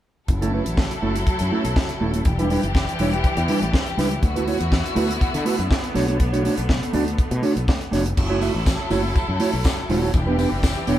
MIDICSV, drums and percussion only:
0, 0, Header, 1, 2, 480
1, 0, Start_track
1, 0, Tempo, 493016
1, 274, Time_signature, 4, 2, 24, 8
1, 10696, End_track
2, 0, Start_track
2, 0, Title_t, "Drums"
2, 276, Note_on_c, 9, 42, 61
2, 277, Note_on_c, 9, 36, 73
2, 373, Note_off_c, 9, 42, 0
2, 374, Note_off_c, 9, 36, 0
2, 411, Note_on_c, 9, 42, 44
2, 508, Note_off_c, 9, 42, 0
2, 642, Note_on_c, 9, 42, 46
2, 739, Note_off_c, 9, 42, 0
2, 754, Note_on_c, 9, 36, 98
2, 756, Note_on_c, 9, 38, 101
2, 851, Note_off_c, 9, 36, 0
2, 854, Note_off_c, 9, 38, 0
2, 886, Note_on_c, 9, 42, 42
2, 984, Note_off_c, 9, 42, 0
2, 1125, Note_on_c, 9, 42, 46
2, 1222, Note_off_c, 9, 42, 0
2, 1233, Note_on_c, 9, 36, 93
2, 1233, Note_on_c, 9, 42, 57
2, 1331, Note_off_c, 9, 36, 0
2, 1331, Note_off_c, 9, 42, 0
2, 1353, Note_on_c, 9, 42, 49
2, 1450, Note_off_c, 9, 42, 0
2, 1603, Note_on_c, 9, 42, 49
2, 1700, Note_off_c, 9, 42, 0
2, 1715, Note_on_c, 9, 36, 100
2, 1718, Note_on_c, 9, 38, 105
2, 1813, Note_off_c, 9, 36, 0
2, 1815, Note_off_c, 9, 38, 0
2, 1838, Note_on_c, 9, 42, 37
2, 1936, Note_off_c, 9, 42, 0
2, 2080, Note_on_c, 9, 42, 41
2, 2177, Note_off_c, 9, 42, 0
2, 2191, Note_on_c, 9, 42, 62
2, 2195, Note_on_c, 9, 36, 90
2, 2288, Note_off_c, 9, 42, 0
2, 2292, Note_off_c, 9, 36, 0
2, 2328, Note_on_c, 9, 42, 47
2, 2425, Note_off_c, 9, 42, 0
2, 2437, Note_on_c, 9, 46, 51
2, 2534, Note_off_c, 9, 46, 0
2, 2563, Note_on_c, 9, 42, 45
2, 2661, Note_off_c, 9, 42, 0
2, 2675, Note_on_c, 9, 36, 100
2, 2681, Note_on_c, 9, 38, 84
2, 2773, Note_off_c, 9, 36, 0
2, 2778, Note_off_c, 9, 38, 0
2, 2812, Note_on_c, 9, 42, 44
2, 2909, Note_off_c, 9, 42, 0
2, 2910, Note_on_c, 9, 46, 57
2, 3007, Note_off_c, 9, 46, 0
2, 3052, Note_on_c, 9, 42, 50
2, 3149, Note_off_c, 9, 42, 0
2, 3155, Note_on_c, 9, 36, 99
2, 3156, Note_on_c, 9, 42, 60
2, 3252, Note_off_c, 9, 36, 0
2, 3253, Note_off_c, 9, 42, 0
2, 3279, Note_on_c, 9, 42, 55
2, 3376, Note_off_c, 9, 42, 0
2, 3390, Note_on_c, 9, 46, 72
2, 3488, Note_off_c, 9, 46, 0
2, 3529, Note_on_c, 9, 42, 45
2, 3626, Note_off_c, 9, 42, 0
2, 3637, Note_on_c, 9, 36, 96
2, 3642, Note_on_c, 9, 38, 102
2, 3734, Note_off_c, 9, 36, 0
2, 3740, Note_off_c, 9, 38, 0
2, 3762, Note_on_c, 9, 42, 41
2, 3860, Note_off_c, 9, 42, 0
2, 3882, Note_on_c, 9, 46, 68
2, 3887, Note_on_c, 9, 38, 31
2, 3979, Note_off_c, 9, 46, 0
2, 3984, Note_off_c, 9, 38, 0
2, 4004, Note_on_c, 9, 42, 39
2, 4102, Note_off_c, 9, 42, 0
2, 4116, Note_on_c, 9, 36, 85
2, 4116, Note_on_c, 9, 42, 70
2, 4213, Note_off_c, 9, 36, 0
2, 4213, Note_off_c, 9, 42, 0
2, 4248, Note_on_c, 9, 42, 45
2, 4345, Note_off_c, 9, 42, 0
2, 4357, Note_on_c, 9, 46, 51
2, 4455, Note_off_c, 9, 46, 0
2, 4484, Note_on_c, 9, 42, 50
2, 4581, Note_off_c, 9, 42, 0
2, 4594, Note_on_c, 9, 36, 102
2, 4600, Note_on_c, 9, 38, 94
2, 4691, Note_off_c, 9, 36, 0
2, 4697, Note_off_c, 9, 38, 0
2, 4728, Note_on_c, 9, 42, 43
2, 4826, Note_off_c, 9, 42, 0
2, 4831, Note_on_c, 9, 46, 59
2, 4928, Note_off_c, 9, 46, 0
2, 4971, Note_on_c, 9, 42, 56
2, 5068, Note_off_c, 9, 42, 0
2, 5075, Note_on_c, 9, 36, 86
2, 5078, Note_on_c, 9, 42, 52
2, 5172, Note_off_c, 9, 36, 0
2, 5175, Note_off_c, 9, 42, 0
2, 5202, Note_on_c, 9, 42, 51
2, 5299, Note_off_c, 9, 42, 0
2, 5315, Note_on_c, 9, 46, 69
2, 5412, Note_off_c, 9, 46, 0
2, 5448, Note_on_c, 9, 42, 43
2, 5546, Note_off_c, 9, 42, 0
2, 5556, Note_on_c, 9, 36, 98
2, 5562, Note_on_c, 9, 38, 98
2, 5653, Note_off_c, 9, 36, 0
2, 5659, Note_off_c, 9, 38, 0
2, 5682, Note_on_c, 9, 42, 40
2, 5780, Note_off_c, 9, 42, 0
2, 5797, Note_on_c, 9, 46, 69
2, 5802, Note_on_c, 9, 38, 34
2, 5894, Note_off_c, 9, 46, 0
2, 5900, Note_off_c, 9, 38, 0
2, 5924, Note_on_c, 9, 42, 43
2, 6021, Note_off_c, 9, 42, 0
2, 6034, Note_on_c, 9, 42, 63
2, 6036, Note_on_c, 9, 36, 85
2, 6132, Note_off_c, 9, 42, 0
2, 6133, Note_off_c, 9, 36, 0
2, 6169, Note_on_c, 9, 42, 48
2, 6266, Note_off_c, 9, 42, 0
2, 6279, Note_on_c, 9, 46, 51
2, 6376, Note_off_c, 9, 46, 0
2, 6401, Note_on_c, 9, 42, 47
2, 6498, Note_off_c, 9, 42, 0
2, 6513, Note_on_c, 9, 36, 93
2, 6517, Note_on_c, 9, 38, 98
2, 6611, Note_off_c, 9, 36, 0
2, 6614, Note_off_c, 9, 38, 0
2, 6650, Note_on_c, 9, 42, 44
2, 6747, Note_off_c, 9, 42, 0
2, 6751, Note_on_c, 9, 46, 53
2, 6848, Note_off_c, 9, 46, 0
2, 6891, Note_on_c, 9, 42, 48
2, 6989, Note_off_c, 9, 42, 0
2, 6995, Note_on_c, 9, 36, 98
2, 6997, Note_on_c, 9, 42, 57
2, 7092, Note_off_c, 9, 36, 0
2, 7095, Note_off_c, 9, 42, 0
2, 7119, Note_on_c, 9, 42, 52
2, 7216, Note_off_c, 9, 42, 0
2, 7232, Note_on_c, 9, 46, 70
2, 7330, Note_off_c, 9, 46, 0
2, 7368, Note_on_c, 9, 42, 50
2, 7465, Note_off_c, 9, 42, 0
2, 7478, Note_on_c, 9, 36, 113
2, 7484, Note_on_c, 9, 38, 109
2, 7575, Note_off_c, 9, 36, 0
2, 7582, Note_off_c, 9, 38, 0
2, 7603, Note_on_c, 9, 42, 42
2, 7701, Note_off_c, 9, 42, 0
2, 7721, Note_on_c, 9, 46, 66
2, 7726, Note_on_c, 9, 38, 33
2, 7818, Note_off_c, 9, 46, 0
2, 7823, Note_off_c, 9, 38, 0
2, 7844, Note_on_c, 9, 42, 43
2, 7942, Note_off_c, 9, 42, 0
2, 7957, Note_on_c, 9, 54, 36
2, 7958, Note_on_c, 9, 36, 81
2, 7958, Note_on_c, 9, 49, 83
2, 8054, Note_off_c, 9, 54, 0
2, 8055, Note_off_c, 9, 36, 0
2, 8055, Note_off_c, 9, 49, 0
2, 8192, Note_on_c, 9, 54, 54
2, 8201, Note_on_c, 9, 46, 52
2, 8290, Note_off_c, 9, 54, 0
2, 8299, Note_off_c, 9, 46, 0
2, 8435, Note_on_c, 9, 36, 111
2, 8435, Note_on_c, 9, 54, 101
2, 8439, Note_on_c, 9, 42, 70
2, 8440, Note_on_c, 9, 38, 94
2, 8532, Note_off_c, 9, 36, 0
2, 8533, Note_off_c, 9, 54, 0
2, 8537, Note_off_c, 9, 38, 0
2, 8537, Note_off_c, 9, 42, 0
2, 8670, Note_on_c, 9, 46, 51
2, 8674, Note_on_c, 9, 54, 65
2, 8767, Note_off_c, 9, 46, 0
2, 8771, Note_off_c, 9, 54, 0
2, 8914, Note_on_c, 9, 36, 95
2, 8915, Note_on_c, 9, 54, 54
2, 8916, Note_on_c, 9, 42, 53
2, 9012, Note_off_c, 9, 36, 0
2, 9013, Note_off_c, 9, 42, 0
2, 9013, Note_off_c, 9, 54, 0
2, 9149, Note_on_c, 9, 46, 75
2, 9158, Note_on_c, 9, 54, 50
2, 9247, Note_off_c, 9, 46, 0
2, 9256, Note_off_c, 9, 54, 0
2, 9389, Note_on_c, 9, 42, 64
2, 9393, Note_on_c, 9, 54, 92
2, 9395, Note_on_c, 9, 36, 106
2, 9400, Note_on_c, 9, 38, 115
2, 9486, Note_off_c, 9, 42, 0
2, 9491, Note_off_c, 9, 54, 0
2, 9492, Note_off_c, 9, 36, 0
2, 9497, Note_off_c, 9, 38, 0
2, 9636, Note_on_c, 9, 46, 73
2, 9733, Note_off_c, 9, 46, 0
2, 9869, Note_on_c, 9, 42, 59
2, 9872, Note_on_c, 9, 36, 91
2, 9874, Note_on_c, 9, 54, 32
2, 9966, Note_off_c, 9, 42, 0
2, 9970, Note_off_c, 9, 36, 0
2, 9972, Note_off_c, 9, 54, 0
2, 10113, Note_on_c, 9, 46, 51
2, 10114, Note_on_c, 9, 54, 52
2, 10210, Note_off_c, 9, 46, 0
2, 10211, Note_off_c, 9, 54, 0
2, 10350, Note_on_c, 9, 36, 98
2, 10354, Note_on_c, 9, 42, 68
2, 10355, Note_on_c, 9, 38, 103
2, 10358, Note_on_c, 9, 54, 103
2, 10447, Note_off_c, 9, 36, 0
2, 10452, Note_off_c, 9, 38, 0
2, 10452, Note_off_c, 9, 42, 0
2, 10455, Note_off_c, 9, 54, 0
2, 10584, Note_on_c, 9, 46, 57
2, 10590, Note_on_c, 9, 54, 61
2, 10682, Note_off_c, 9, 46, 0
2, 10687, Note_off_c, 9, 54, 0
2, 10696, End_track
0, 0, End_of_file